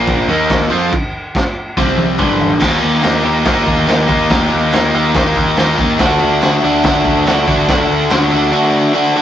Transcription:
Already playing: A#1 A#2 F3 A#3
0.07 kick, crash
0.28 D#2 D#3 A#3 D#4
0.50 kick, snare, crash
0.70 F2 F3 C4 F4
0.93 kick, crash
1.35 kick, snare, crash
1.77 C2 C3 G3 C4, kick, snare
1.97 high tom
2.19 G1 G2 D3 G3, kick, mid tom
2.29 mid tom
2.40 floor tom
2.50 floor tom
2.60 D#2 D#3 A#3 D#4 G4, kick, snare, crash
2.82 D#2
3.02 D#2 D#3 A#3 D#4 G4, snare, crash
3.23 D#2 D#3 A#3 D#4 G4
3.44 D#2 D#3 A#3 D#4 G4, kick, snare, crash
3.67 D#2, kick
3.87 D#2 D#3 A#3 D#4 G4, snare, crash
4.07 D#2 D#3 A#3 D#4 G4, kick
4.30 D#2 D#3 A#3 D#4 G4, kick, snare, crash
4.53 D#2
4.72 D#2 D#3 A#3 D#4 G4, snare, crash
4.94 D#2 D#3 A#3 D#4 G4
5.14 D#2 D#3 A#3 D#4 G4, kick, snare, crash
5.36 D#2, kick
5.57 D#2 D#3 A#3 D#4 G4, snare, crash
5.78 D#2 D#3 A#3 D#4 G4, kick
5.99 D2 D3 A3 D4 F#4, kick, snare, crash
6.20 D2
6.42 D2 D3 A3 D4 F#4, snare, crash
6.63 D2 D3 A3 D4 F#4
6.83 D2 D3 A3 D4 F#4, kick, snare, crash
7.05 D2, kick
7.26 D2 D3 A3 D4 F#4, snare, crash
7.47 D2 D3 A3 D4 F#4, kick
7.68 D2 D3 A3 D4 F#4, kick, snare, crash
7.89 D2
8.10 D2 D3 A3 D4 F#4, snare, crash
8.30 D2 D3 A3 D4 F#4
8.52 D3 A3 D4 F#4
8.93 D3 A3 D4 F#4
9.14 D3 A3 D4 F#4

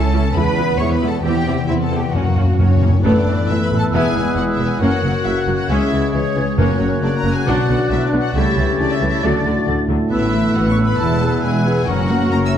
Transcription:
Already playing: C#2 C#3 A3 C#4 E4 A4 A5
0.03 C#5
0.13 C#4 E4 E5
0.25 A5
0.34 E2 G#3 B3 E4 B4 B5
0.46 B2
0.58 G#3 B3 E4
0.69 E4
0.78 E2 G#3 E4 G#4 C#5 C#6
0.90 B4 B5
1.02 G#3 E4 E5
1.07 A4 A5
1.13 G#5
1.23 E2 C4 E4 G4 G5
1.35 E3
1.47 C3 C4 E4
1.58 E4
1.68 E2 B3 C4 E4 E5 C6
1.81 E4 A4 A5
1.92 C4 E4 E5
1.98 G4 G5
2.03 C6
2.13 F#2 A#3 C#4 F#4 F#5
2.25 F#2 C#3
2.36 F#2 A#3 C#4
2.43 F#2
2.47 F#2 C#4
2.58 F#2 A#3 C#4 C#5
2.66 F#2
2.70 A#4
2.75 F#2
2.81 F#2 A#3 C#4 C#5
2.89 F#2 C#6
3.03 A1 A2 E3 A3 B3 D4 E4 A4 B4 D5 E6
3.26 A1 A2 E3 A3
3.48 A1 A2 E3 E4 E5
3.62 B4 B5
3.70 A1 A2 E3 A3 B4
3.77 A4 A5
3.92 E1 E2 G#3 B3 E4 G#4 G#5
4.15 E1 E2 B2 G#3 B3
4.36 E1 E2 E3 G#3 F#4 F#5
4.52 E4 E5
4.59 E1 E2 G#3 B3 B4
4.67 G#4 G#5
4.80 F#1 F#2 C#3 A#3 C#4 F#4 A#4 C#5 F#5 F#6
5.04 F#1 F#2 C#3 F#3 A#3
5.25 F#1 F#2 C#3 F#3 C#4 E4 E5
5.40 F#4 F#5
5.47 F#1 F#2 F#3 A#3 F#4
5.54 F#4 F#5
5.69 C#2 C#3 G#3 C#4 E4 G#4 E5 G#6
5.91 C#2 E3 G#3
6.14 C#2 C#3 E3 C#4 C#5
6.35 C#2 E3 G#3 C#4
6.57 F#1 F#2 A#3 C#4 F#4 A#4 C#5 F#6
6.80 F#1 F#2 C#3 F#3 A#3
7.02 F#1 F#2 C#3 F#3 D4 D5
7.17 A#4 A#5
7.24 F#1 F#2 F#3 A#3 F#4
7.32 G#4 G#5
7.46 B1 B2 F#3 D4 F#4 D5 F#5
7.69 B1 B2 D3 F#3 B3
7.91 B1 B2 D3 F#3 D4 E4 E5
8.06 D4 D5
8.13 B1 B2 D3 B3 F#4
8.20 F#4 F#5
8.34 C#2 C#3 G3 A3 C#4 E4 G4 C#5 E5 A6
8.56 C#2 C#3 E3 G3 C#4
8.78 C#2 C#3 E3 D4 E4 D5
8.93 E4 E5
9.00 C#2 C#3 E3 G3 A4
9.08 E4 E5
9.23 D2 A2 D3 F#3 A3 D4 F#4 D5
9.45 D2 D3 F#3 D4
9.67 D2 D3 F#4
9.88 D2 D3 F#3 A4
10.10 A1 A2 B3 E4 B4 E5 E6
10.33 E3 A3
10.54 A1 A2 B3 E4 F#4 F#5
10.70 C#5 C#6
10.77 A3 A4
10.84 B4 B5
10.98 E1 E2 B2 E3 G#3 E4 A4 A5
11.22 B2 B3 G#4
11.42 E1 E2 G#3 E4 G#4 G#5
11.66 B3 G#4 B4
11.86 F#1 F#2 C#3 F#3 A#3 C#4 F#4 A#4 F#5 C#6
12.10 C#3 A#3 F#4
12.31 F#1 F#2 F#3 C#4 A#4 A#5
12.46 E5 E6
12.53 A#3 F#4

